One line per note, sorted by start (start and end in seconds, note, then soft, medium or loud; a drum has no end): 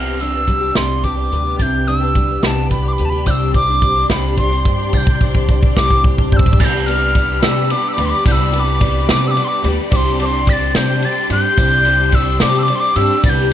0.00 0.72 C2 medium
0.00 0.20 C3 medium
0.00 0.17 G3 medium
0.00 0.47 G3 soft
0.00 0.18 B3 medium
0.00 0.19 D4 medium
0.00 0.20 G4 medium
0.00 0.23 F6 medium
0.18 0.34 G3 soft
0.18 0.34 B3 soft
0.18 0.33 D4 medium
0.18 0.31 G4 medium
0.18 0.78 E6 medium
0.18 closed hi-hat medium
0.33 0.62 B3 soft
0.33 0.61 D4 soft
0.33 0.59 G4 soft
0.47 2.16 G3 medium
0.47 kick medium
0.47 closed hi-hat medium
0.60 0.74 B3 soft
0.60 0.75 D4 soft
0.60 0.75 G4 soft
0.74 1.28 C2 medium
0.74 1.03 C3 medium
0.74 1.01 G3 medium
0.74 1.03 B3 medium
0.74 1.04 D4 medium
0.74 1.05 G4 medium
0.74 1.05 C6 medium
0.74 snare medium
0.74 closed hi-hat medium
1.03 1.17 G3 soft
1.03 1.17 B3 medium
1.03 1.16 D4 medium
1.03 1.14 G4 medium
1.03 1.58 D6 medium
1.03 kick medium
1.03 closed hi-hat medium
1.15 1.45 B3 soft
1.15 1.44 D4 soft
1.15 1.43 G4 soft
1.32 1.58 D2 medium
1.32 1.57 B4 soft
1.32 closed hi-hat medium
1.44 1.58 B3 soft
1.44 1.58 D4 soft
1.44 1.58 G4 soft
1.57 2.39 C2 medium
1.57 1.87 C3 medium
1.57 1.84 G3 medium
1.57 1.86 B3 medium
1.57 1.87 D4 medium
1.57 1.88 G4 medium
1.57 1.63 A6 medium
1.57 kick medium
1.57 closed hi-hat medium
1.62 1.89 G6 medium
1.85 2.01 G3 medium
1.85 2.01 B3 medium
1.85 2.00 D4 medium
1.85 1.99 G4 medium
1.85 1.99 D#6 medium
1.85 closed hi-hat medium
1.99 2.30 B3 soft
1.99 2.28 D4 soft
1.99 2.26 G4 soft
1.99 2.45 E6 medium
2.15 4.94 G3 medium
2.15 kick medium
2.15 closed hi-hat medium
2.28 2.42 B3 soft
2.28 2.42 D4 soft
2.28 2.43 G4 soft
2.42 2.95 C2 medium
2.42 2.71 C3 medium
2.42 2.69 G3 medium
2.42 2.71 B3 medium
2.42 2.71 D4 medium
2.42 2.72 G4 medium
2.42 2.48 B5 medium
2.42 snare medium
2.42 closed hi-hat medium
2.47 2.71 A5 medium
2.70 2.85 G3 soft
2.70 2.85 B3 medium
2.70 2.84 D4 medium
2.70 2.82 G4 medium
2.70 2.89 B5 medium
2.70 kick medium
2.70 closed hi-hat medium
2.83 3.14 B3 soft
2.83 3.12 D4 soft
2.83 3.11 G4 medium
2.88 2.94 D6 medium
2.93 3.06 B5 medium
2.98 3.25 D2 medium
2.98 3.24 B4 medium
2.98 closed hi-hat medium
3.05 3.11 A5 medium
3.10 3.25 D4 soft
3.10 3.26 G4 medium
3.10 3.28 B5 medium
3.15 3.26 B3 soft
3.25 4.90 C2 medium
3.25 4.06 C2 medium
3.25 3.54 C3 medium
3.25 4.90 C3 medium
3.25 3.52 G3 medium
3.25 3.53 G3 medium
3.25 3.53 C4 medium
3.25 3.53 D4 medium
3.25 3.54 D4 medium
3.25 6.56 G4 medium
3.25 3.55 G4 medium
3.25 3.53 C5 medium
3.25 6.57 D5 medium
3.25 3.54 D5 medium
3.25 6.56 C6 medium
3.25 3.31 G6 medium
3.25 kick medium
3.25 closed hi-hat medium
3.25 tambourine medium
3.30 3.54 E6 loud
3.53 3.68 G3 medium
3.53 3.81 G3 medium
3.53 3.69 C4 medium
3.53 3.81 D4 medium
3.53 3.68 D4 medium
3.53 3.66 G4 medium
3.53 3.81 C5 medium
3.53 3.81 D5 medium
3.53 4.07 D6 loud
3.53 kick medium
3.53 closed hi-hat medium
3.53 tambourine soft
3.67 3.97 C4 soft
3.67 3.96 D4 medium
3.67 3.94 G4 medium
3.82 4.09 G3 medium
3.82 4.09 D4 medium
3.82 4.09 C5 medium
3.82 4.09 D5 medium
3.82 kick medium
3.82 closed hi-hat medium
3.96 4.09 C4 soft
3.96 4.09 D4 soft
3.96 4.10 G4 medium
4.09 4.62 C2 medium
4.09 4.38 C3 medium
4.09 4.35 G3 medium
4.09 4.37 G3 medium
4.09 4.36 C4 medium
4.09 4.37 D4 medium
4.09 4.38 G4 medium
4.09 4.37 C5 medium
4.09 4.37 D5 medium
4.09 4.37 B5 medium
4.09 kick medium
4.09 snare loud
4.09 closed hi-hat medium
4.09 tambourine medium
4.24 tambourine soft
4.36 4.51 G3 medium
4.36 4.65 G3 medium
4.36 4.52 C4 medium
4.36 4.51 D4 medium
4.36 4.65 D4 medium
4.36 4.50 G4 medium
4.36 4.65 C5 medium
4.36 4.65 D5 medium
4.36 4.95 C6 medium
4.36 kick medium
4.36 closed hi-hat medium
4.36 tambourine soft
4.51 4.80 C4 soft
4.51 4.79 D4 medium
4.51 4.78 G4 medium
4.51 tambourine soft
4.65 4.91 G2 loud
4.65 4.92 G3 medium
4.65 4.92 D4 medium
4.65 4.92 C5 medium
4.65 4.92 D5 medium
4.65 kick medium
4.65 closed hi-hat medium
4.65 tambourine soft
4.79 4.92 C4 soft
4.79 4.93 D4 soft
4.79 4.93 G4 medium
4.92 5.73 C2 medium
4.92 6.56 C2 medium
4.92 5.21 C3 medium
4.92 6.56 C3 medium
4.92 5.19 G3 medium
4.92 5.20 G3 medium
4.92 5.20 C4 medium
4.92 5.20 D4 medium
4.92 5.21 D4 medium
4.92 5.22 G4 medium
4.92 5.20 C5 medium
4.92 5.20 D5 medium
4.92 4.98 A6 medium
4.92 kick medium
4.92 tambourine medium
4.97 5.22 G6 medium
5.07 kick loud
5.21 5.35 G3 medium
5.21 5.48 G3 medium
5.21 5.35 C4 medium
5.21 5.48 D4 medium
5.21 5.34 D4 medium
5.21 5.33 G4 medium
5.21 5.48 C5 medium
5.21 5.48 D5 medium
5.21 kick loud
5.21 tambourine soft
5.34 5.63 C4 medium
5.34 5.62 D4 medium
5.34 5.60 G4 medium
5.34 kick loud
5.48 5.76 G3 medium
5.48 5.76 D4 medium
5.48 5.76 C5 medium
5.48 5.76 D5 medium
5.48 kick loud
5.48 tambourine soft
5.61 5.76 C4 soft
5.61 5.77 D4 soft
5.61 5.76 G4 medium
5.61 kick loud
5.76 6.28 C2 loud
5.76 6.04 C3 medium
5.76 6.02 G3 medium
5.76 6.03 G3 medium
5.76 6.04 C4 medium
5.76 6.03 D4 medium
5.76 6.05 D4 medium
5.76 6.05 G4 medium
5.76 6.03 C5 medium
5.76 6.03 D5 medium
5.76 6.02 D6 loud
5.76 kick loud
5.76 snare loud
5.76 tambourine medium
5.90 kick loud
6.04 6.18 G3 medium
6.04 6.30 G3 medium
6.04 6.19 C4 medium
6.04 6.30 D4 medium
6.04 6.17 D4 medium
6.04 6.16 G4 medium
6.04 6.31 C5 medium
6.04 6.31 D5 medium
6.04 kick loud
6.17 6.46 C4 medium
6.17 6.45 D4 medium
6.17 6.43 G4 medium
6.17 kick loud
6.32 6.58 G2 medium
6.32 6.58 G3 medium
6.32 6.58 D4 medium
6.32 6.59 C5 medium
6.32 6.59 D5 loud
6.32 6.38 G6 medium
6.32 kick loud
6.37 6.62 E6 loud
6.37 kick loud
6.44 6.60 C4 medium
6.44 6.59 D4 medium
6.44 6.59 G4 medium
6.44 kick loud
6.44 tambourine soft
6.53 kick loud
6.59 7.39 C2 medium
6.59 8.22 C2 medium
6.59 6.87 C3 medium
6.59 8.22 C3 medium
6.59 6.87 G3 medium
6.59 6.86 G3 medium
6.59 6.86 B3 medium
6.59 6.88 B3 medium
6.59 6.86 D4 medium
6.59 13.53 G4 medium
6.59 6.85 G4 medium
6.59 6.86 B4 medium
6.59 13.53 D5 medium
6.59 6.87 D5 loud
6.59 9.88 B5 medium
6.59 6.66 A6 medium
6.59 kick loud
6.59 crash loud
6.59 tambourine loud
6.65 6.88 G6 medium
6.75 tambourine soft
6.86 7.14 G3 medium
6.86 7.14 B3 medium
6.86 7.13 B3 soft
6.86 7.14 D4 medium
6.86 7.14 G4 medium
6.86 7.14 B4 medium
6.86 7.15 D5 medium
6.86 7.44 F6 loud
6.86 ride medium
6.86 tambourine soft
7.13 7.42 G3 medium
7.13 7.42 B3 medium
7.13 7.41 D4 medium
7.13 7.42 D4 medium
7.13 7.41 G4 medium
7.13 7.42 B4 medium
7.13 7.42 D5 medium
7.13 kick medium
7.13 ride medium
7.42 7.69 C3 medium
7.42 7.71 C3 medium
7.42 7.69 G3 medium
7.42 7.69 B3 medium
7.42 7.70 D4 medium
7.42 7.69 D4 medium
7.42 7.70 G4 medium
7.42 7.70 B4 medium
7.42 7.70 D5 medium
7.42 7.73 E6 medium
7.42 snare loud
7.42 ride medium
7.42 tambourine loud
7.70 7.98 G3 medium
7.70 7.96 G3 medium
7.70 7.97 B3 medium
7.70 7.98 B3 medium
7.70 7.97 D4 medium
7.70 7.96 G4 medium
7.70 7.97 B4 medium
7.70 7.97 D5 medium
7.70 7.89 D6 medium
7.70 ride medium
7.70 tambourine soft
7.88 7.94 E6 medium
7.93 8.25 G4 medium
7.93 8.06 D6 medium
7.98 8.11 D2 loud
7.98 8.24 G3 medium
7.98 8.25 B3 medium
7.98 8.24 D4 medium
7.98 8.25 D4 medium
7.98 8.24 B4 medium
7.98 8.24 D5 medium
7.98 ride medium
8.05 8.11 C6 medium
8.10 8.26 D6 medium
8.25 9.05 C2 loud
8.25 9.88 C2 medium
8.25 8.53 C3 medium
8.25 9.88 C3 medium
8.25 8.53 G3 medium
8.25 8.51 G3 medium
8.25 8.53 B3 medium
8.25 8.51 B3 medium
8.25 8.51 D4 medium
8.25 8.52 D4 medium
8.25 8.50 G4 medium
8.25 8.51 B4 medium
8.25 8.52 D5 medium
8.25 8.33 G6 medium
8.25 kick loud
8.25 ride medium
8.25 tambourine medium
8.32 8.55 E6 loud
8.40 tambourine soft
8.52 8.78 G3 medium
8.52 8.79 B3 medium
8.52 8.79 B3 soft
8.52 8.78 D4 medium
8.52 8.80 D4 medium
8.52 8.80 G4 medium
8.52 8.79 B4 medium
8.52 8.79 D5 medium
8.52 8.61 E6 loud
8.52 ride medium
8.52 tambourine soft
8.60 9.10 D6 loud
8.80 9.08 G3 medium
8.80 9.07 G3 medium
8.80 9.07 B3 medium
8.80 9.08 B3 medium
8.80 9.07 D4 medium
8.80 9.08 D4 medium
8.80 9.07 G4 medium
8.80 9.07 B4 medium
8.80 9.07 D5 medium
8.80 kick loud
8.80 ride medium
9.08 9.35 C3 loud
9.08 9.37 C3 medium
9.08 9.34 G3 medium
9.08 9.35 G3 medium
9.08 9.34 B3 medium
9.08 9.36 B3 medium
9.08 9.34 D4 medium
9.08 9.37 D4 medium
9.08 9.36 G4 medium
9.08 9.35 B4 medium
9.08 9.35 D5 medium
9.08 9.29 D6 loud
9.08 snare loud
9.08 ride medium
9.08 tambourine medium
9.28 9.46 D6 loud
9.28 9.32 E6 medium
9.36 9.61 G3 medium
9.36 9.64 G3 medium
9.36 9.62 B3 medium
9.36 9.65 B3 medium
9.36 9.62 D4 medium
9.36 9.64 D4 medium
9.36 9.62 G4 medium
9.36 9.62 B4 medium
9.36 9.62 D5 medium
9.36 ride medium
9.36 tambourine soft
9.45 9.49 C6 medium
9.45 9.68 D6 loud
9.63 9.77 D2 loud
9.63 9.89 G3 medium
9.63 9.90 B3 medium
9.63 9.93 B3 soft
9.63 9.90 D4 medium
9.63 9.92 D4 medium
9.63 9.91 G4 medium
9.63 9.90 B4 medium
9.63 9.89 D5 medium
9.63 ride medium
9.90 11.53 C2 medium
9.90 10.71 C2 medium
9.90 11.53 C3 medium
9.90 10.20 C3 medium
9.90 10.17 G3 medium
9.90 10.20 G3 medium
9.90 10.17 C4 medium
9.90 10.20 C4 medium
9.90 10.18 D4 medium
9.90 10.20 D4 medium
9.90 10.18 C5 medium
9.90 10.18 D5 medium
9.90 13.20 C6 medium
9.90 9.97 D6 medium
9.90 kick loud
9.90 ride medium
9.90 tambourine medium
9.95 10.18 G4 medium
9.95 10.18 C6 loud
10.06 tambourine soft
10.19 10.45 G3 medium
10.19 10.45 C4 medium
10.19 10.47 C4 medium
10.19 10.45 D4 medium
10.19 10.48 D4 medium
10.19 10.47 G4 medium
10.19 10.46 C5 medium
10.19 10.46 D5 medium
10.19 10.26 D6 medium
10.19 ride medium
10.19 tambourine soft
10.25 10.51 C6 loud
10.47 10.73 G3 medium
10.47 10.75 G3 medium
10.47 10.73 C4 medium
10.47 10.76 C4 medium
10.47 10.73 D4 medium
10.47 10.75 D4 medium
10.47 10.75 G4 medium
10.47 10.73 C5 medium
10.47 10.73 D5 medium
10.47 10.54 B6 medium
10.47 kick medium
10.47 ride medium
10.53 10.78 A6 loud
10.74 11.01 C3 loud
10.74 11.04 C3 medium
10.74 11.01 G3 medium
10.74 11.02 G3 medium
10.74 11.01 C4 medium
10.74 11.03 C4 medium
10.74 11.01 D4 medium
10.74 11.03 D4 medium
10.74 11.03 G4 medium
10.74 11.01 C5 medium
10.74 11.01 D5 medium
10.74 11.07 G6 loud
10.74 snare loud
10.74 ride medium
10.74 tambourine loud
11.02 11.28 G3 medium
11.02 11.31 G3 medium
11.02 11.28 C4 medium
11.02 11.31 C4 medium
11.02 11.29 D4 medium
11.02 11.31 D4 medium
11.02 11.30 G4 medium
11.02 11.29 C5 medium
11.02 11.29 D5 medium
11.02 11.31 A6 medium
11.02 ride medium
11.02 tambourine soft
11.30 11.43 G2 loud
11.30 11.56 G3 medium
11.30 11.56 C4 medium
11.30 11.58 C4 medium
11.30 11.56 D4 medium
11.30 11.58 D4 medium
11.30 11.58 G4 medium
11.30 11.56 C5 medium
11.30 11.57 D5 medium
11.30 12.16 G6 loud
11.30 ride medium
11.57 13.20 C2 medium
11.57 12.37 C2 loud
11.57 13.20 C3 medium
11.57 11.86 C3 medium
11.57 11.84 G3 medium
11.57 11.86 G3 medium
11.57 11.84 C4 medium
11.57 11.86 C4 medium
11.57 11.84 D4 medium
11.57 11.86 D4 medium
11.57 11.84 G4 medium
11.57 11.84 C5 medium
11.57 11.84 D5 medium
11.57 kick loud
11.57 ride medium
11.57 tambourine loud
11.72 tambourine soft
11.85 12.11 G3 medium
11.85 12.12 C4 medium
11.85 12.13 C4 soft
11.85 12.12 D4 medium
11.85 12.14 D4 soft
11.85 12.13 G4 medium
11.85 12.12 C5 medium
11.85 12.12 D5 medium
11.85 ride medium
11.85 tambourine soft
12.12 12.39 G3 medium
12.12 12.41 G3 medium
12.12 12.39 C4 medium
12.12 12.41 C4 medium
12.12 12.40 D4 medium
12.12 12.41 D4 medium
12.12 12.41 G4 medium
12.12 12.39 C5 medium
12.12 12.40 D5 medium
12.12 12.43 E6 loud
12.12 kick medium
12.12 ride medium
12.40 12.67 C3 loud
12.40 12.70 C3 medium
12.40 12.67 G3 medium
12.40 12.67 C4 medium
12.40 12.68 C4 medium
12.40 12.67 D4 medium
12.40 12.69 D4 medium
12.40 12.69 G4 medium
12.40 12.68 C5 medium
12.40 12.68 D5 medium
12.40 12.60 D6 loud
12.40 snare loud
12.40 ride medium
12.40 tambourine loud
12.59 12.64 E6 medium
12.63 12.77 D6 loud
12.68 12.96 G3 medium
12.68 12.95 G3 medium
12.68 12.97 C4 medium
12.68 12.95 C4 medium
12.68 12.95 D4 medium
12.68 12.96 D4 medium
12.68 12.95 G4 medium
12.68 12.95 C5 medium
12.68 12.95 D5 medium
12.68 ride medium
12.76 12.81 C6 medium
12.80 12.97 D6 loud
12.80 tambourine soft
12.96 13.09 G2 loud
12.96 13.23 G3 medium
12.96 13.23 C4 medium
12.96 13.25 C4 soft
12.96 13.23 D4 medium
12.96 13.24 D4 medium
12.96 13.24 G4 medium
12.96 13.23 C5 medium
12.96 13.23 D5 medium
12.96 13.24 E6 loud
12.96 ride medium
13.10 tambourine soft
13.24 13.53 C2 medium
13.24 13.52 C3 medium
13.24 13.53 C3 medium
13.24 13.52 G3 medium
13.24 13.50 G3 medium
13.24 13.50 B3 medium
13.24 13.52 B3 medium
13.24 13.50 D4 medium
13.24 13.52 D4 medium
13.24 13.50 G4 medium
13.24 13.51 B4 medium
13.24 13.51 D5 loud
13.24 13.53 B5 medium
13.24 13.31 A6 medium
13.24 kick loud
13.24 ride medium
13.24 tambourine medium
13.30 13.50 G6 loud
13.38 tambourine soft